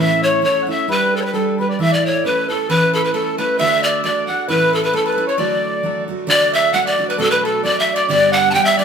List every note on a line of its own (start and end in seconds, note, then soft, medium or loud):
0.00 0.42 A2 medium
0.00 0.42 E3 medium
0.00 0.40 A3 medium
0.00 0.41 C#4 medium
0.00 0.41 E4 medium
0.00 0.43 A4 medium
0.00 0.24 E5 medium
0.00 0.25 E5 loud
0.23 0.44 C#5 loud
0.23 0.42 C#5 medium
0.41 0.65 A3 medium
0.41 0.66 C#4 medium
0.41 0.67 E4 medium
0.41 0.67 A4 medium
0.41 0.62 C#5 medium
0.41 0.67 C#5 medium
0.62 0.68 F#5 medium
0.67 0.87 A3 medium
0.67 0.88 C#4 medium
0.67 0.88 E4 medium
0.67 0.89 A4 medium
0.67 0.89 E5 medium
0.71 0.89 E5 medium
0.88 1.32 G3 medium
0.88 1.33 D4 medium
0.88 1.34 G4 medium
0.88 1.12 B4 medium
0.88 1.34 B4 medium
0.88 1.18 B4 loud
1.14 1.23 A4 medium
1.14 1.21 A4 medium
1.22 1.34 B4 medium
1.22 1.33 B4 medium
1.22 1.27 C#5 medium
1.33 1.57 G3 medium
1.33 1.58 D4 medium
1.33 1.59 G4 medium
1.33 1.55 A4 medium
1.33 1.56 A4 medium
1.33 1.59 B4 medium
1.56 1.79 G3 soft
1.56 1.79 D4 soft
1.56 1.59 A4 soft
1.56 1.68 B4 medium
1.61 1.80 G4 medium
1.61 1.69 B4 medium
1.61 1.80 B4 medium
1.69 1.79 D5 medium
1.79 2.24 A2 medium
1.79 2.24 E3 medium
1.79 2.24 A3 medium
1.79 2.24 E4 medium
1.79 2.27 A4 medium
1.79 1.91 E5 medium
1.79 1.95 E5 loud
1.92 2.25 D5 medium
1.92 2.08 D5 medium
2.06 2.25 C#5 loud
2.24 2.47 A3 medium
2.24 2.48 C#4 medium
2.24 2.49 E4 medium
2.24 2.50 A4 medium
2.24 2.46 B4 medium
2.24 2.51 B4 medium
2.49 2.68 A3 medium
2.49 2.69 C#4 soft
2.49 2.70 E4 soft
2.49 2.71 A4 medium
2.49 2.70 A4 medium
2.49 2.69 A4 medium
2.69 3.14 A2 medium
2.69 3.14 E3 medium
2.69 3.13 A3 medium
2.69 3.13 C#4 medium
2.69 3.14 E4 medium
2.69 3.15 A4 medium
2.69 2.96 B4 loud
2.69 2.92 B4 medium
2.69 3.16 B4 medium
2.93 3.03 A4 medium
2.93 3.04 A4 medium
3.05 3.13 B4 medium
3.05 3.15 B4 medium
3.14 3.37 A3 soft
3.14 3.38 C#4 medium
3.14 3.39 E4 medium
3.14 3.39 A4 medium
3.14 3.38 A4 medium
3.14 3.37 A4 medium
3.14 3.39 A4 medium
3.38 3.58 A3 medium
3.38 3.59 C#4 medium
3.38 3.59 E4 medium
3.38 3.59 A4 medium
3.38 3.60 B4 medium
3.38 3.59 B4 medium
3.38 3.57 B4 medium
3.59 4.03 D3 medium
3.59 4.03 A3 medium
3.59 4.03 D4 medium
3.59 4.04 F#4 medium
3.59 4.05 A4 medium
3.59 3.85 E5 loud
3.59 4.05 E5 medium
3.59 3.82 E5 medium
3.83 4.02 D5 medium
3.83 4.04 D5 loud
4.03 4.27 A3 medium
4.03 4.28 D4 medium
4.03 4.29 F#4 medium
4.03 4.29 A4 medium
4.03 4.28 D5 medium
4.03 4.45 D5 medium
4.03 4.26 D5 medium
4.27 4.48 A3 soft
4.27 4.49 D4 medium
4.27 4.49 F#4 medium
4.27 4.49 A4 medium
4.27 4.51 F#5 medium
4.27 4.47 F#5 medium
4.48 4.93 A2 medium
4.48 4.93 E3 medium
4.48 4.92 A3 medium
4.48 4.93 C#4 medium
4.48 4.93 E4 medium
4.48 4.95 A4 medium
4.48 4.73 B4 medium
4.48 4.71 B4 medium
4.48 4.73 B4 loud
4.73 4.82 A4 medium
4.73 4.83 A4 medium
4.73 4.86 A4 medium
4.83 4.93 B4 medium
4.83 4.98 B4 medium
4.92 5.15 A3 medium
4.92 5.16 C#4 medium
4.92 5.17 E4 medium
4.92 5.25 A4 medium
4.92 5.05 A4 medium
4.92 5.18 A4 medium
4.92 5.08 A4 medium
5.06 5.11 B4 medium
5.06 5.30 B4 medium
5.12 5.17 B4 medium
5.17 5.37 A3 soft
5.17 5.38 C#4 medium
5.17 5.39 E4 medium
5.17 5.38 A4 medium
5.17 5.27 B4 medium
5.27 5.38 C#5 medium
5.37 6.26 D3 medium
5.37 5.83 F#3 medium
5.37 5.83 A3 medium
5.37 5.84 F#4 medium
5.37 5.85 A4 medium
5.37 6.03 D5 medium
5.37 6.04 D5 loud
5.83 6.07 F#3 medium
5.83 6.07 A3 medium
5.83 6.08 F#4 medium
5.83 6.09 A4 medium
6.08 6.26 F#3 medium
6.08 6.26 A3 medium
6.08 6.27 F#4 medium
6.08 6.28 A4 medium
6.27 7.18 D3 medium
6.27 6.72 F#3 medium
6.27 6.73 A3 medium
6.27 6.74 D4 medium
6.27 6.73 F#4 medium
6.27 6.51 D5 medium
6.27 6.53 D5 medium
6.27 6.52 D5 loud
6.52 6.74 E5 medium
6.52 6.75 E5 loud
6.73 6.97 F#3 medium
6.73 6.97 A3 medium
6.73 6.98 D4 medium
6.73 6.99 F#4 medium
6.73 6.85 F#5 loud
6.73 6.85 F#5 medium
6.86 7.19 D5 medium
6.86 7.11 D5 loud
6.86 7.09 D5 medium
6.98 7.18 F#3 medium
6.98 7.18 A3 medium
6.98 7.18 D4 medium
6.98 7.19 F#4 medium
7.10 7.19 B4 medium
7.18 7.63 B2 medium
7.18 7.62 F#3 medium
7.18 7.63 A3 medium
7.18 7.64 D4 medium
7.18 7.64 F#4 medium
7.18 7.31 A4 medium
7.18 7.32 A4 loud
7.18 7.31 A4 medium
7.31 7.43 B4 medium
7.31 7.42 B4 medium
7.43 7.62 A4 medium
7.43 7.63 A4 medium
7.63 8.08 F#3 medium
7.63 8.09 A3 medium
7.63 8.09 D4 medium
7.63 8.09 F#4 medium
7.63 7.77 D5 medium
7.63 7.81 D5 loud
7.63 7.79 D5 medium
7.80 7.98 E5 loud
7.94 8.06 D5 loud
7.94 8.09 D5 loud
8.08 8.53 G2 medium
8.08 8.54 D3 medium
8.08 8.52 G3 medium
8.08 8.53 B3 medium
8.08 8.54 D4 medium
8.08 8.54 G4 medium
8.08 8.33 D5 loud
8.08 8.34 D5 loud
8.08 8.35 D5 medium
8.32 8.52 F#5 medium
8.32 8.52 F#5 loud
8.32 8.53 F#5 medium
8.51 8.76 G3 medium
8.51 8.78 B3 medium
8.51 8.64 G5 loud
8.51 8.65 G5 medium
8.51 8.54 A5 medium
8.55 8.78 D4 medium
8.55 8.79 G4 medium
8.55 8.66 G5 loud
8.65 8.80 E5 loud
8.65 8.77 E5 medium
8.65 8.78 E5 medium
8.77 8.85 G3 medium
8.77 8.85 B3 medium
8.77 8.85 D4 medium
8.77 8.85 G4 medium
8.77 8.85 D5 loud
8.77 8.85 D5 medium